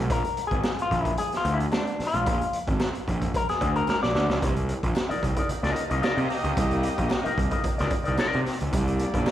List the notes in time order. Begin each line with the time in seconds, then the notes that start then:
0.10 A#1 A#4, kick, closed hi-hat, muted conga
0.24 closed hi-hat
0.37 closed hi-hat, muted conga
0.47 G#4, kick, closed hi-hat
0.52 G#1
0.64 snare, clap, high conga
0.79 F4, closed hi-hat
0.91 A#1, kick, closed hi-hat, low conga
1.01 E4
1.05 kick, closed hi-hat
1.17 G#4, closed hi-hat, muted conga
1.32 snare, closed hi-hat
1.37 F4
1.45 D2, closed hi-hat
1.54 E4
1.60 closed hi-hat
1.72 D4, snare, clap, high conga
1.87 closed hi-hat
2.00 muted picked electric bass stroke, snare, open hi-hat
2.07 F4
2.14 A#1, closed hi-hat, high conga
2.26 A#1, kick, closed hi-hat, muted conga
2.41 closed hi-hat
2.53 closed hi-hat
2.68 G#1, kick, closed hi-hat
2.80 snare, clap, high conga
2.95 closed hi-hat
3.08 A#1, kick, closed hi-hat
3.21 kick, closed hi-hat
3.34 A#4, kick, closed hi-hat, muted conga
3.49 G#4, snare, closed hi-hat
3.61 D2, kick, closed hi-hat
3.76 A#4, closed hi-hat
3.88 A#4, snare, clap, high conga
4.03 A#1 D5, snare
4.15 D2, snare
4.29 C#2, snare, high conga
4.42 C2, kick, closed hi-hat
4.56 closed hi-hat
4.69 closed hi-hat
4.83 A#1, kick, closed hi-hat
4.96 snare, clap
5.09 D#4 A#4 D5, muted picked electric bass stroke, closed hi-hat
5.23 C2, kick, closed hi-hat
5.36 D#4 A#4 D5, kick, closed hi-hat
5.49 A#3 G4 D#5, muted picked electric bass stroke, closed hi-hat
5.63 C#2 D#4 A#4 D#5, snare, closed hi-hat
5.76 closed hi-hat
5.90 C2 D#4 A#4 D#5, closed hi-hat
6.02 D#4 A#4 D5, snare, clap
6.17 C3, closed hi-hat
6.30 snare, open hi-hat
6.44 C#2, closed hi-hat
6.57 C2, kick, closed hi-hat
6.71 closed hi-hat
6.83 closed hi-hat
6.98 A#1, kick, closed hi-hat
7.10 snare, clap
7.24 D#4 A#4 D#5, muted picked electric bass stroke, closed hi-hat
7.38 C2, kick, closed hi-hat
7.51 D#4 A#4 D#5, kick, closed hi-hat
7.63 muted picked electric bass stroke, kick, closed hi-hat
7.78 C#2 D#4 A#4 D5, snare, closed hi-hat
7.90 kick, closed hi-hat
8.04 C2 D#4 A#4 D5, closed hi-hat
8.18 D#4 A#4 D5, snare, clap
8.33 C3, closed hi-hat
8.46 snare, open hi-hat
8.61 C#2, closed hi-hat
8.73 C2 A#3 G4 D5, kick, closed hi-hat, muted conga
8.87 closed hi-hat
8.99 closed hi-hat, muted conga
9.14 A#1, kick, closed hi-hat
9.26 snare, clap, high conga